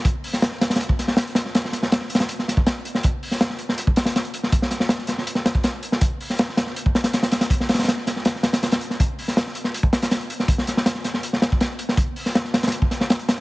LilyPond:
\new DrumStaff \with { instrumentName = "Drums" } \drummode { \time 4/4 \tempo 4 = 161 <hh bd>8 hho16 sn16 <hh sn>16 sn16 <hh sn>16 <hh sn>32 <hh sn>32 hh16 bd16 <hh sn>16 sn16 <hh sn>16 hh16 <hh sn>16 sn16 | <hh sn>16 sn16 <hh sn>16 sn16 <hh sn>16 sn16 hh32 <hh sn>32 <hh sn>16 hh16 sn16 <hh sn>16 bd16 <hh sn>8 hh16 sn16 | <hh bd>8 hho16 sn16 <hh sn>16 sn16 hh16 sn16 hh16 bd16 <hh sn>16 <hh sn>16 <hh sn>16 hh16 hh16 sn16 | <hh bd>16 sn16 <hh sn>16 sn16 <hh sn>16 sn16 <hh sn>16 sn16 hh16 sn16 <hh sn>16 bd16 <hh sn>8 hh16 sn16 |
<hh bd>8 hho16 sn16 <hh sn>16 sn16 <hh sn>16 sn16 hh16 bd16 <hh sn>16 <hh sn>16 <hh sn>16 <hh sn>16 <hh sn>16 <hh sn>16 | <hh bd>16 sn16 <hh sn>32 <hh sn>32 <hh sn>32 <hh sn>32 <hh sn>16 sn16 <hh sn>16 sn16 <hh sn>16 sn16 <hh sn>16 <hh sn>16 <hh sn>16 <hh sn>16 hh16 sn16 | <hh bd>8 hho16 sn16 <hh sn>16 sn16 hh16 sn16 hh16 bd16 <hh sn>16 <hh sn>16 <hh sn>16 hh16 hh16 sn16 | <hh bd>16 sn16 <hh sn>16 sn16 <hh sn>16 sn16 <hh sn>16 sn16 hh16 sn16 <hh sn>16 bd16 <hh sn>8 hh16 sn16 |
<hh bd>8 hho16 sn16 <hh sn>16 sn16 <hh sn>16 <hh sn>32 <hh sn>32 hh16 bd16 <hh sn>16 sn16 <hh sn>16 hh16 <hh sn>8 | }